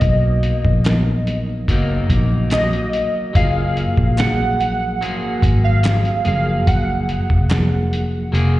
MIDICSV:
0, 0, Header, 1, 6, 480
1, 0, Start_track
1, 0, Key_signature, 6, "major"
1, 0, Tempo, 831025
1, 14, Time_signature, 4, 2, 24, 8
1, 4966, End_track
2, 0, Start_track
2, 0, Title_t, "Synth keys"
2, 0, Program_c, 0, 88
2, 0, Note_on_c, 0, 75, 86
2, 1452, Note_off_c, 0, 75, 0
2, 1458, Note_on_c, 0, 75, 92
2, 1913, Note_off_c, 0, 75, 0
2, 1938, Note_on_c, 0, 77, 96
2, 2419, Note_on_c, 0, 78, 107
2, 2431, Note_off_c, 0, 77, 0
2, 2650, Note_off_c, 0, 78, 0
2, 2657, Note_on_c, 0, 78, 98
2, 3258, Note_on_c, 0, 77, 87
2, 3274, Note_off_c, 0, 78, 0
2, 3614, Note_off_c, 0, 77, 0
2, 3621, Note_on_c, 0, 77, 91
2, 3855, Note_on_c, 0, 78, 84
2, 3865, Note_off_c, 0, 77, 0
2, 4966, Note_off_c, 0, 78, 0
2, 4966, End_track
3, 0, Start_track
3, 0, Title_t, "Clean electric guitar"
3, 0, Program_c, 1, 27
3, 0, Note_on_c, 1, 54, 49
3, 0, Note_on_c, 1, 58, 56
3, 0, Note_on_c, 1, 63, 57
3, 969, Note_off_c, 1, 63, 0
3, 975, Note_off_c, 1, 54, 0
3, 977, Note_on_c, 1, 54, 96
3, 983, Note_off_c, 1, 58, 0
3, 986, Note_on_c, 1, 58, 91
3, 992, Note_on_c, 1, 63, 100
3, 1922, Note_off_c, 1, 54, 0
3, 1925, Note_on_c, 1, 54, 72
3, 1932, Note_off_c, 1, 58, 0
3, 1934, Note_on_c, 1, 58, 71
3, 1943, Note_off_c, 1, 63, 0
3, 1946, Note_on_c, 1, 68, 80
3, 2892, Note_off_c, 1, 54, 0
3, 2894, Note_off_c, 1, 58, 0
3, 2894, Note_on_c, 1, 54, 73
3, 2896, Note_on_c, 1, 58, 81
3, 2902, Note_off_c, 1, 68, 0
3, 2904, Note_on_c, 1, 68, 88
3, 3605, Note_off_c, 1, 68, 0
3, 3608, Note_on_c, 1, 68, 65
3, 3624, Note_off_c, 1, 58, 0
3, 3625, Note_off_c, 1, 54, 0
3, 3626, Note_on_c, 1, 58, 54
3, 3630, Note_on_c, 1, 54, 50
3, 4804, Note_off_c, 1, 54, 0
3, 4807, Note_on_c, 1, 54, 82
3, 4810, Note_off_c, 1, 58, 0
3, 4813, Note_on_c, 1, 58, 95
3, 4814, Note_off_c, 1, 68, 0
3, 4817, Note_on_c, 1, 68, 100
3, 4966, Note_off_c, 1, 54, 0
3, 4966, Note_off_c, 1, 58, 0
3, 4966, Note_off_c, 1, 68, 0
3, 4966, End_track
4, 0, Start_track
4, 0, Title_t, "Reed electric piano"
4, 0, Program_c, 2, 4
4, 0, Control_c, 2, 64, 127
4, 0, Note_on_c, 2, 54, 65
4, 0, Note_on_c, 2, 59, 63
4, 0, Note_on_c, 2, 63, 68
4, 0, Note_on_c, 2, 70, 74
4, 347, Note_off_c, 2, 54, 0
4, 349, Note_off_c, 2, 59, 0
4, 350, Note_off_c, 2, 63, 0
4, 353, Note_off_c, 2, 70, 0
4, 490, Note_on_c, 2, 54, 75
4, 493, Note_on_c, 2, 59, 70
4, 499, Note_on_c, 2, 63, 79
4, 501, Note_on_c, 2, 70, 87
4, 1083, Note_off_c, 2, 54, 0
4, 1084, Note_off_c, 2, 59, 0
4, 1087, Note_off_c, 2, 63, 0
4, 1088, Note_off_c, 2, 70, 0
4, 1932, Note_on_c, 2, 54, 65
4, 1937, Note_on_c, 2, 58, 61
4, 1941, Control_c, 2, 64, 0
4, 1941, Note_on_c, 2, 65, 59
4, 1945, Note_on_c, 2, 68, 71
4, 2035, Control_c, 2, 64, 127
4, 2229, Note_off_c, 2, 54, 0
4, 2231, Note_off_c, 2, 58, 0
4, 2233, Note_off_c, 2, 65, 0
4, 2235, Note_off_c, 2, 68, 0
4, 2410, Note_on_c, 2, 54, 69
4, 2415, Note_on_c, 2, 58, 61
4, 2421, Note_on_c, 2, 53, 61
4, 2424, Note_on_c, 2, 68, 77
4, 3003, Note_off_c, 2, 54, 0
4, 3005, Note_off_c, 2, 58, 0
4, 3008, Note_off_c, 2, 53, 0
4, 3010, Note_off_c, 2, 68, 0
4, 3608, Note_on_c, 2, 54, 62
4, 3610, Note_on_c, 2, 58, 67
4, 3617, Note_on_c, 2, 53, 62
4, 3622, Control_c, 2, 64, 0
4, 3622, Note_on_c, 2, 68, 74
4, 3720, Control_c, 2, 64, 127
4, 4187, Note_off_c, 2, 54, 0
4, 4188, Note_off_c, 2, 58, 0
4, 4192, Note_off_c, 2, 53, 0
4, 4194, Note_off_c, 2, 68, 0
4, 4333, Note_on_c, 2, 54, 68
4, 4334, Note_on_c, 2, 58, 60
4, 4341, Note_on_c, 2, 53, 66
4, 4345, Note_on_c, 2, 68, 68
4, 4924, Note_off_c, 2, 54, 0
4, 4925, Note_off_c, 2, 58, 0
4, 4928, Note_off_c, 2, 53, 0
4, 4930, Note_off_c, 2, 68, 0
4, 4966, End_track
5, 0, Start_track
5, 0, Title_t, "Picked electric bass"
5, 0, Program_c, 3, 34
5, 10, Note_on_c, 3, 35, 96
5, 300, Note_off_c, 3, 35, 0
5, 374, Note_on_c, 3, 34, 80
5, 951, Note_off_c, 3, 34, 0
5, 970, Note_on_c, 3, 30, 84
5, 1164, Note_off_c, 3, 30, 0
5, 1210, Note_on_c, 3, 34, 85
5, 1596, Note_off_c, 3, 34, 0
5, 1935, Note_on_c, 3, 30, 93
5, 2223, Note_off_c, 3, 30, 0
5, 2296, Note_on_c, 3, 34, 80
5, 2897, Note_off_c, 3, 34, 0
5, 2897, Note_on_c, 3, 32, 81
5, 3088, Note_off_c, 3, 32, 0
5, 3134, Note_on_c, 3, 32, 85
5, 3518, Note_off_c, 3, 32, 0
5, 3619, Note_on_c, 3, 30, 85
5, 3809, Note_off_c, 3, 30, 0
5, 3855, Note_on_c, 3, 30, 97
5, 4143, Note_off_c, 3, 30, 0
5, 4218, Note_on_c, 3, 29, 71
5, 4793, Note_off_c, 3, 29, 0
5, 4814, Note_on_c, 3, 29, 81
5, 4966, Note_off_c, 3, 29, 0
5, 4966, End_track
6, 0, Start_track
6, 0, Title_t, "Drums"
6, 6, Note_on_c, 9, 42, 82
6, 10, Note_on_c, 9, 36, 112
6, 64, Note_off_c, 9, 42, 0
6, 68, Note_off_c, 9, 36, 0
6, 249, Note_on_c, 9, 42, 69
6, 306, Note_off_c, 9, 42, 0
6, 373, Note_on_c, 9, 36, 84
6, 431, Note_off_c, 9, 36, 0
6, 490, Note_on_c, 9, 42, 78
6, 492, Note_on_c, 9, 39, 75
6, 498, Note_on_c, 9, 38, 116
6, 548, Note_off_c, 9, 42, 0
6, 549, Note_off_c, 9, 39, 0
6, 556, Note_off_c, 9, 38, 0
6, 734, Note_on_c, 9, 42, 69
6, 792, Note_off_c, 9, 42, 0
6, 972, Note_on_c, 9, 36, 77
6, 975, Note_on_c, 9, 42, 84
6, 1029, Note_off_c, 9, 36, 0
6, 1033, Note_off_c, 9, 42, 0
6, 1211, Note_on_c, 9, 36, 79
6, 1213, Note_on_c, 9, 42, 84
6, 1269, Note_off_c, 9, 36, 0
6, 1271, Note_off_c, 9, 42, 0
6, 1445, Note_on_c, 9, 42, 82
6, 1456, Note_on_c, 9, 39, 84
6, 1458, Note_on_c, 9, 38, 102
6, 1503, Note_off_c, 9, 42, 0
6, 1514, Note_off_c, 9, 39, 0
6, 1515, Note_off_c, 9, 38, 0
6, 1578, Note_on_c, 9, 42, 42
6, 1636, Note_off_c, 9, 42, 0
6, 1694, Note_on_c, 9, 42, 64
6, 1752, Note_off_c, 9, 42, 0
6, 1936, Note_on_c, 9, 36, 126
6, 1937, Note_on_c, 9, 42, 90
6, 1994, Note_off_c, 9, 36, 0
6, 1994, Note_off_c, 9, 42, 0
6, 2177, Note_on_c, 9, 42, 63
6, 2235, Note_off_c, 9, 42, 0
6, 2296, Note_on_c, 9, 36, 82
6, 2354, Note_off_c, 9, 36, 0
6, 2415, Note_on_c, 9, 39, 77
6, 2417, Note_on_c, 9, 42, 78
6, 2425, Note_on_c, 9, 38, 110
6, 2472, Note_off_c, 9, 39, 0
6, 2474, Note_off_c, 9, 42, 0
6, 2483, Note_off_c, 9, 38, 0
6, 2660, Note_on_c, 9, 42, 71
6, 2718, Note_off_c, 9, 42, 0
6, 2902, Note_on_c, 9, 42, 77
6, 2960, Note_off_c, 9, 42, 0
6, 3133, Note_on_c, 9, 36, 87
6, 3138, Note_on_c, 9, 42, 90
6, 3191, Note_off_c, 9, 36, 0
6, 3195, Note_off_c, 9, 42, 0
6, 3369, Note_on_c, 9, 42, 86
6, 3377, Note_on_c, 9, 39, 83
6, 3382, Note_on_c, 9, 38, 106
6, 3427, Note_off_c, 9, 42, 0
6, 3435, Note_off_c, 9, 39, 0
6, 3439, Note_off_c, 9, 38, 0
6, 3495, Note_on_c, 9, 42, 43
6, 3553, Note_off_c, 9, 42, 0
6, 3610, Note_on_c, 9, 42, 69
6, 3668, Note_off_c, 9, 42, 0
6, 3854, Note_on_c, 9, 42, 99
6, 3855, Note_on_c, 9, 36, 117
6, 3912, Note_off_c, 9, 42, 0
6, 3913, Note_off_c, 9, 36, 0
6, 4095, Note_on_c, 9, 42, 64
6, 4152, Note_off_c, 9, 42, 0
6, 4216, Note_on_c, 9, 36, 81
6, 4274, Note_off_c, 9, 36, 0
6, 4330, Note_on_c, 9, 42, 79
6, 4334, Note_on_c, 9, 39, 75
6, 4339, Note_on_c, 9, 38, 108
6, 4388, Note_off_c, 9, 42, 0
6, 4392, Note_off_c, 9, 39, 0
6, 4397, Note_off_c, 9, 38, 0
6, 4580, Note_on_c, 9, 42, 71
6, 4638, Note_off_c, 9, 42, 0
6, 4821, Note_on_c, 9, 42, 88
6, 4879, Note_off_c, 9, 42, 0
6, 4966, End_track
0, 0, End_of_file